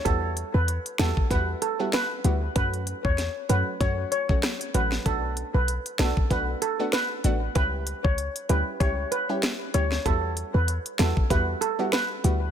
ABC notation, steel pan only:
X:1
M:4/4
L:1/16
Q:"Swing 16ths" 1/4=96
K:Edor
V:1 name="Steel pan"
A z2 B z2 A z B z A z B3 z | B z2 c z2 B z c z c z3 B z | A z2 B z2 A z B z A z B3 z | B z2 c z2 B z c z B z3 c z |
A z2 B z2 A z B z A z B3 z |]